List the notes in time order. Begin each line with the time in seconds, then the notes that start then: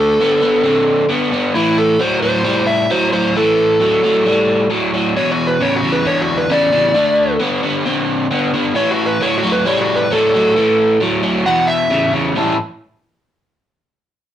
Already playing: D3 A3 A4
0.20 D3 B3
0.42 D3 B3
0.64 D3 C4
1.09 D3 B3
1.31 D3 B3
1.54 A2 E3 E4
1.78 A4
1.99 A2 F#3 C5
2.22 A2 F#3 C5
2.44 A2 G3
2.67 E5
2.90 A2 F#3 C5
3.12 A2 F#3 C5
3.36 A2 E3 A4
3.80 A2 F#3
4.03 A2 F#3
4.25 A2 G3
4.70 A2 F#3
4.93 A2 F#3
5.16 E2 B2 C#5
5.32 F#4
5.47 B4
5.60 E2 C#3 C#5
5.76 F#4
5.83 E2 C#3
5.92 B4
6.05 E2 D3 C#5
6.22 F#4
6.38 B4
6.50 E2 C#3 D5
6.73 E2 C#3
6.95 D3 A3
7.39 D3 B3
7.63 D3 B3
7.85 D3 C4
8.31 D3 B3
8.54 D3 B3
8.74 A2 E3 C#5
8.91 F#4
9.06 B4
9.20 A2 F#3 C#5
9.38 F#4
9.43 A2 F#3
9.52 B4
9.65 A2 G3 C#5
9.81 F#4
9.96 B4
10.11 A2 F#3 A4
10.34 A2 F#3
10.56 A2 E3
11.01 A2 F#3
11.23 A2 F#3
11.46 E2 B2 F#5
11.67 E5
11.90 E2 C#3
12.12 E2 C#3
12.36 A2 E3 G3 C#4 E4 A4